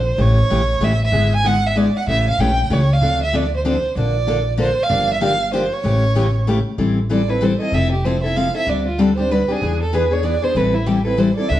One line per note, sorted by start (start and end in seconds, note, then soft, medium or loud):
0.00 0.14 A#1 medium
0.00 0.22 C5 medium
0.17 0.43 A1 medium
0.17 0.38 C#3 medium
0.17 0.38 E3 medium
0.17 0.38 A3 medium
0.17 0.38 C#4 medium
0.17 0.38 G4 medium
0.17 0.86 C#5 medium
0.50 0.76 A#1 medium
0.50 0.61 C#3 medium
0.50 0.61 E3 medium
0.50 0.61 A3 medium
0.50 0.61 C#4 medium
0.50 0.61 G4 medium
0.80 1.08 A1 medium
0.80 0.91 C#3 medium
0.80 0.92 E3 medium
0.80 0.92 A3 medium
0.80 0.92 C#4 medium
0.80 0.92 G4 medium
0.80 1.04 E5 medium
1.05 1.33 E5 loud
1.12 1.88 G#1 medium
1.12 1.32 D3 medium
1.12 1.32 G#3 medium
1.12 1.32 B3 medium
1.12 1.32 E4 medium
1.12 1.33 G#4 medium
1.36 1.48 G#5 medium
1.44 1.55 D3 medium
1.44 1.55 G#3 medium
1.44 1.55 B3 medium
1.44 1.55 E4 medium
1.44 1.55 G#4 medium
1.44 1.68 F#5 medium
1.67 1.79 E5 medium
1.76 1.86 D3 medium
1.76 1.86 G#3 medium
1.76 1.87 B3 medium
1.76 1.86 E4 medium
1.76 1.87 G#4 medium
1.76 1.98 D5 medium
1.97 2.07 F#5 medium
2.07 2.32 A1 medium
2.07 2.27 C#3 medium
2.07 2.27 E3 medium
2.07 2.27 A3 medium
2.07 2.28 C#4 medium
2.07 2.28 G4 medium
2.07 2.27 E5 medium
2.30 2.42 F5 medium
2.38 2.65 A#1 medium
2.38 2.50 C#3 medium
2.38 2.50 E3 medium
2.38 2.50 A3 medium
2.38 2.50 C#4 medium
2.38 2.50 G4 medium
2.38 2.75 G5 medium
2.70 2.97 C#2 medium
2.70 2.80 C#3 medium
2.70 2.81 E3 medium
2.70 2.81 A3 medium
2.70 2.81 C#4 medium
2.70 2.81 G4 medium
2.70 2.95 C#5 medium
2.93 3.23 F5 medium
3.01 3.76 D2 medium
3.01 3.21 D3 medium
3.01 3.21 F3 medium
3.01 3.21 C4 medium
3.01 3.21 D4 medium
3.01 3.22 A4 medium
3.23 3.38 E5 medium
3.33 3.43 D3 medium
3.33 3.44 F3 medium
3.33 3.44 C4 medium
3.33 3.44 D4 medium
3.33 3.44 A4 medium
3.33 3.55 D5 medium
3.56 3.64 C5 medium
3.65 3.75 D3 medium
3.65 3.75 F3 medium
3.65 3.75 C4 medium
3.65 3.75 D4 medium
3.65 3.76 A4 medium
3.65 3.95 C5 medium
3.96 4.71 A#1 medium
3.96 4.15 D3 medium
3.96 4.16 F3 medium
3.96 4.16 A#3 medium
3.96 4.16 D4 medium
3.96 4.16 A4 medium
3.96 4.56 D5 medium
4.27 4.37 D3 medium
4.27 4.38 F3 medium
4.27 4.38 A#3 medium
4.27 4.38 D4 medium
4.27 4.38 A4 medium
4.58 4.68 D3 medium
4.58 4.68 F3 medium
4.58 4.69 A#3 medium
4.58 4.69 D4 medium
4.58 4.69 A4 medium
4.58 4.85 C5 medium
4.83 5.13 F5 loud
4.89 5.65 G1 medium
4.89 5.09 D3 medium
4.89 5.09 F3 medium
4.89 5.09 A#3 medium
4.89 5.09 D4 medium
4.89 5.09 G4 medium
5.13 5.22 E5 medium
5.21 5.32 D3 medium
5.21 5.32 F3 medium
5.21 5.32 A#3 medium
5.21 5.32 D4 medium
5.21 5.32 G4 medium
5.21 5.52 F5 medium
5.53 5.63 D3 medium
5.53 5.63 F3 medium
5.53 5.64 A#3 medium
5.53 5.64 D4 medium
5.53 5.64 G4 medium
5.53 5.75 C5 medium
5.73 6.48 C#5 medium
5.83 6.59 A1 medium
5.83 6.03 C#3 medium
5.83 6.03 E3 medium
5.83 6.04 A3 medium
5.83 6.04 C#4 medium
5.83 6.04 G4 medium
6.15 6.26 C#3 medium
6.15 6.26 E3 medium
6.15 6.26 A3 medium
6.15 6.26 C#4 medium
6.15 6.26 G4 loud
6.47 6.58 C#3 medium
6.47 6.58 E3 medium
6.47 6.58 A3 medium
6.47 6.58 C#4 medium
6.47 6.58 G4 medium
6.78 7.54 A1 medium
6.78 6.98 E3 medium
6.78 6.98 G3 medium
6.78 6.98 C4 medium
6.78 6.98 E4 medium
6.78 6.98 A4 medium
7.10 7.20 E3 medium
7.10 7.20 G3 medium
7.10 7.21 C4 medium
7.10 7.21 E4 medium
7.10 7.21 A4 medium
7.10 7.31 D5 medium
7.28 7.41 C4 soft
7.28 7.41 E4 soft
7.28 7.40 A4 medium
7.28 7.45 B4 medium
7.41 7.52 E3 medium
7.41 7.52 G3 medium
7.41 7.52 C4 medium
7.41 7.52 E4 medium
7.41 7.52 A4 medium
7.41 7.60 C5 medium
7.60 7.73 C4 soft
7.60 7.73 E4 soft
7.60 7.72 A4 soft
7.60 7.76 D#5 medium
7.72 8.48 F1 medium
7.72 7.92 F3 medium
7.72 7.93 C4 medium
7.72 7.93 E4 medium
7.72 7.93 A4 medium
7.72 7.92 E5 medium
7.92 8.06 G4 medium
8.05 8.15 F3 medium
8.05 8.16 C4 medium
8.05 8.16 E4 medium
8.05 8.16 A4 medium
8.05 8.23 C5 medium
8.23 8.35 C4 soft
8.23 8.36 E4 soft
8.23 8.35 A4 medium
8.23 8.38 E5 medium
8.36 8.46 F3 medium
8.36 8.47 C4 medium
8.36 8.47 E4 medium
8.36 8.47 A4 medium
8.36 8.55 F5 medium
8.55 8.66 C4 soft
8.55 8.67 E4 soft
8.55 8.67 A4 medium
8.55 8.71 E5 medium
8.67 9.42 D2 medium
8.67 8.87 D3 medium
8.67 8.87 G3 medium
8.67 8.87 C4 medium
8.67 8.87 D4 medium
8.67 8.87 G4 medium
8.67 8.87 D5 medium
8.87 9.02 F4 medium
8.98 9.09 D3 medium
8.98 9.09 G3 medium
8.98 9.09 C4 medium
8.98 9.09 D4 medium
8.98 9.09 G4 medium
8.98 9.16 A4 medium
9.17 9.30 C4 soft
9.17 9.30 D4 medium
9.17 9.29 G4 medium
9.17 9.33 C5 medium
9.31 9.41 D3 medium
9.31 9.41 G3 medium
9.31 9.41 C4 medium
9.31 9.41 D4 medium
9.31 9.42 G4 medium
9.31 9.53 B4 medium
9.48 9.62 C4 soft
9.48 9.61 D4 medium
9.48 9.61 G4 medium
9.48 9.81 G#4 medium
9.62 10.37 E2 medium
9.62 9.81 E3 medium
9.62 9.82 B3 medium
9.62 9.82 D4 medium
9.62 9.82 G#4 medium
9.82 9.96 A4 medium
9.93 10.03 E3 medium
9.93 10.03 B3 medium
9.93 10.04 D4 medium
9.93 10.04 G#4 medium
9.93 10.14 B4 medium
10.11 10.22 B3 soft
10.11 10.23 D4 soft
10.11 10.23 G#4 soft
10.11 10.26 C#5 medium
10.23 10.34 E3 medium
10.23 10.34 B3 medium
10.23 10.35 D4 medium
10.23 10.35 G#4 medium
10.23 10.45 D5 medium
10.42 10.56 B3 soft
10.42 10.55 D4 soft
10.42 10.55 G#4 medium
10.42 10.58 C5 medium
10.55 11.31 A1 medium
10.55 10.75 E3 medium
10.55 10.75 G3 medium
10.55 10.75 C4 medium
10.55 10.75 E4 medium
10.55 10.76 A4 medium
10.55 10.76 B4 medium
10.75 10.88 E4 medium
10.86 10.97 E3 medium
10.86 10.97 G3 medium
10.86 10.98 C4 medium
10.86 10.98 E4 medium
10.86 11.05 G4 medium
10.86 10.98 A4 medium
11.05 11.17 C4 soft
11.05 11.17 E4 soft
11.05 11.17 A4 soft
11.05 11.20 B4 medium
11.17 11.29 E3 medium
11.17 11.29 G3 medium
11.17 11.29 C4 medium
11.17 11.29 E4 medium
11.17 11.29 A4 medium
11.17 11.36 C5 medium
11.36 11.50 C4 soft
11.36 11.50 E4 medium
11.36 11.49 A4 soft
11.36 11.50 D5 loud
11.49 11.60 D2 medium
11.49 11.60 D3 medium
11.49 11.60 F3 medium
11.49 11.60 C4 medium
11.49 11.60 D4 medium
11.49 11.60 A4 medium
11.49 11.60 E5 medium